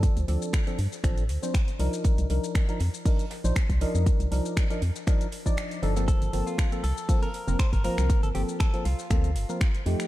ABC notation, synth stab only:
X:1
M:4/4
L:1/16
Q:"Swing 16ths" 1/4=119
K:Gm
V:1 name="Synth stab"
[F,CDA]2 [F,CDA]3 [F,CDA] z2 [F,CDA]2 z [F,CDc] z2 [F,DEB]2- | [F,DEB]2 [F,DEB]3 [F,DEB] z2 [F,DEB]2 z [F,DEc] z2 [F,DEB]2- | [F,DEB]2 [F,DEB]3 [F,DEB] z2 [F,DEB]2 z [F,DEd]3 [F,DEA] [F,B,CA]- | [F,B,CA]2 [F,B,CA]3 [F,B,CA] z2 [F,B,CA]2 z [F,B,CB] z2 [F,B,CB]2- |
[F,B,CB]2 [F,B,CA]3 [F,B,CA] z2 [F,B,CA]2 z [F,B,CB] z2 [F,A,EG]2 |]